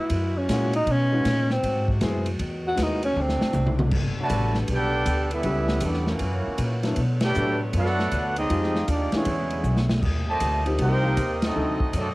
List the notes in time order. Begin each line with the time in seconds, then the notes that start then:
Already playing: E3 F#4
0.00 E4
0.10 F#2 G#3 A#3, kick, ride
0.38 C#4
0.49 A#2 G#3 A#3 C#4 E4 F#4, kick, snare, hi-hat pedal, ride
0.73 D#4, ride
0.87 B2 C#3 D#4 B4, kick, ride
0.92 C#4
1.12 G#3 B3 C#4 D#4 F#4
1.25 A#2, kick, snare, hi-hat pedal, ride
1.50 C4, snare
1.63 G#2 C3 F#3 G#3 F#4, kick, ride
1.88 kick
2.01 F#2 G#3 B3 C4 E4 G#4, kick, snare, hi-hat pedal, ride
2.26 ride
2.39 E2 D#3 F#3 B3, kick, ride
2.68 F#4
2.76 D#2 G#3 B3 D#4 E4 F#4, kick, snare, hi-hat pedal, ride
2.83 D#4
3.03 C#4, ride
3.15 D2 C3 A3 D4
3.21 C4
3.29 snare
3.41 snare
3.53 C2, hi-hat pedal, mid tom
3.67 mid tom
3.79 mid tom
3.91 G1 D3 A3 B3 A4, kick, crash
4.19 D3 F#3 A3 F#4 D5 A5, muted upright bass stroke
4.23 B4
4.30 A1 G3 B3 D4 F#4 A4, kick, hi-hat pedal, ride
4.54 snare
4.68 B1 B3 D4 G4, kick, ride
4.72 D4 A4 B4 G5
5.06 D2, kick, hi-hat pedal, ride
5.31 G3 B3 C#4 E4 G4 B4 E5, ride
5.43 C#2 E3 G3 B3 C#4 E4 G4, kick, ride
5.68 snare
5.80 E2, kick, hi-hat pedal, ride
5.85 B3 D4 E4 G4 D5
5.94 snare
6.07 E3 A#3 C#4, snare
6.11 E4 F#4 C#5
6.19 F#2 F#3 A#3, kick, ride
6.47 muted upright bass stroke
6.58 A#2, kick, hi-hat pedal, ride
6.83 F#3 A3 B3 D4 E4, snare, ride
6.96 B2 D3 A3 B3, kick, ride
7.21 A3 D4 G4 A4 G5, snare, ride
7.25 D4 B4
7.35 A2 F#3 A3 B3 D4 A4, hi-hat pedal
7.73 F#2 A3 D4 F#4, kick, ride
7.77 D4 A4 B4 F#5
7.86 snare
7.99 snare
8.11 D2, kick, hi-hat pedal, ride
8.36 G#3 C4 D#4 G4 G#4 D#5, ride
8.50 F2 D#3 F3 G#3 C4 D#4 F4 G4, kick, ride
8.63 snare
8.75 snare
8.88 D#2 A#3 D4 D5, kick, hi-hat pedal, ride
8.92 D#4 G4
9.12 D3 E3 G#3 B3 C#4 D4 E4 F#4, muted upright bass stroke, snare, ride
9.17 G#4 C#5
9.25 E2 D3 F#3 G#3 E4, kick, ride
9.50 ride
9.63 B1, hi-hat pedal
9.77 snare
9.90 snare
10.01 D#2 A#2 C3 G3 D#5, kick, crash
10.29 A#2 C3 A3 G4 C5 D#5 A5
10.40 D2, kick, hi-hat pedal, ride
10.66 F3 A#3 C4 D#4 G4, ride
10.78 C2 A#3 C4 D#4 G4 A#4 C5 G5, kick, ride
11.03 F3 A#3 C4 D#4 G4
11.17 D#2, kick, hi-hat pedal, ride
11.42 A3 C4 D#4 F#4 A4 D#5, snare, ride
11.55 D2 D3 F#3 C4 D4 D#4 A4
11.80 muted upright bass stroke, kick
11.93 F#2 F#3 A3 D4, kick, hi-hat pedal, ride
11.98 C4 F#4 A4 D5